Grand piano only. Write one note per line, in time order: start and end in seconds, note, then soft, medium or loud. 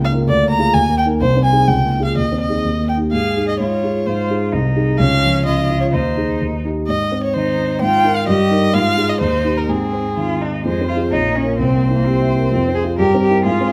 0.00 0.26 C#2 medium
0.00 0.22 A#3 soft
0.13 0.26 F4 soft
0.13 0.26 A#4 soft
0.27 0.73 D2 medium
0.43 0.68 A#3 soft
0.59 0.73 F4 soft
0.59 0.73 G#4 soft
0.74 1.19 D#2 medium
0.89 1.14 A#3 soft
1.06 1.20 D#4 soft
1.06 1.20 A#4 soft
1.21 1.66 C2 soft
1.36 1.62 C4 soft
1.52 1.66 D#4 soft
1.52 1.67 G#4 soft
1.68 2.15 C#2 soft
1.84 2.10 A#3 soft
2.00 2.14 F4 soft
2.00 2.15 G#4 soft
2.16 2.63 D#2 soft
2.32 2.58 C4 soft
2.49 2.63 D#4 soft
2.49 2.64 G#4 soft
2.64 3.12 D#2 soft
2.81 3.07 A#3 soft
2.97 3.11 D#4 soft
2.97 3.12 G4 soft
3.13 3.59 G#2 soft
3.36 3.58 D#4 soft
3.36 3.58 G#4 soft
3.60 4.05 G#2 soft
3.83 4.04 F4 soft
3.83 4.05 G#4 soft
4.07 4.52 G#2 soft
4.30 4.51 D#4 soft
4.30 4.51 G#4 soft
4.53 4.98 C2 soft
4.76 4.97 D#4 soft
4.76 4.97 G#4 soft
4.99 5.90 C#2 soft
5.23 5.60 F3 soft
5.46 5.84 C#3 soft
5.70 5.93 F4 soft
5.93 6.39 D#2 soft
6.17 6.38 D#4 soft
6.17 6.39 G#4 soft
6.41 6.87 D#2 soft
6.65 6.86 D#4 soft
6.65 6.86 G4 soft
6.89 7.79 G#2 soft
7.12 7.49 C4 soft
7.36 7.73 D#3 soft
7.58 7.82 D#4 soft
7.81 8.27 G#2 soft
8.05 8.26 F4 soft
8.05 8.26 A#4 soft
8.28 8.73 G2 medium
8.51 8.72 D#4 soft
8.51 8.72 A#4 soft
8.74 9.20 G#2 medium
8.97 9.18 D#4 soft
8.97 9.19 G#4 soft
9.21 9.67 D#2 soft
9.44 9.66 D#4 soft
9.44 9.66 G4 soft
9.68 10.62 G#2 soft
9.93 10.31 C4 soft
10.17 10.55 D#3 soft
10.41 10.65 D#4 soft
10.65 11.11 F2 soft
10.81 11.06 C4 soft
10.96 11.10 F4 soft
10.96 11.11 G#4 soft
11.12 11.57 A#1 soft
11.27 11.52 A#3 soft
11.44 11.57 F4 soft
11.44 11.58 A#4 soft
11.59 12.49 C2 soft
11.74 11.99 A#3 soft
11.90 12.15 E4 soft
12.06 12.30 G4 soft
12.21 12.46 E5 soft
12.37 12.52 A#4 soft
12.52 12.97 F2 soft
12.68 12.93 C4 soft
12.83 12.97 F4 soft
12.83 12.97 G#4 soft
12.98 13.44 G2 soft
13.15 13.39 C4 soft
13.30 13.44 E4 soft
13.30 13.44 A#4 soft
13.45 13.72 G#2 soft
13.61 13.72 C4 soft